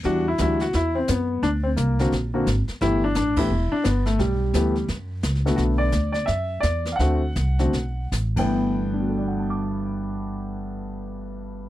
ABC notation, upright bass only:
X:1
M:4/4
L:1/8
Q:"Swing" 1/4=173
K:G
V:1 name="Upright bass" clef=bass
E,,2 D,,2 E,,2 F,,2 | D,,2 C,,2 ^A,,,2 _A,,, z | G,,,2 A,,,2 E,,, z G,,,2 | B,,,2 D,,2 F,,2 ^C,,2 |
B,,,2 D,,2 F,,2 E,,2 | D,,2 C,,2 B,,,2 A,,, G,,,- | G,,,8- | G,,,8 |]